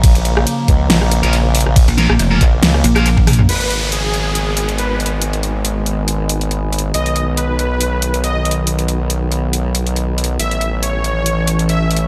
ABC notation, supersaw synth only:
X:1
M:4/4
L:1/8
Q:"Swing 16ths" 1/4=139
K:G#dor
V:1 name="Supersaw synth"
z8 | z8 | B z G4 B z | z8 |
d z B4 d z | z8 | =e z c4 e z |]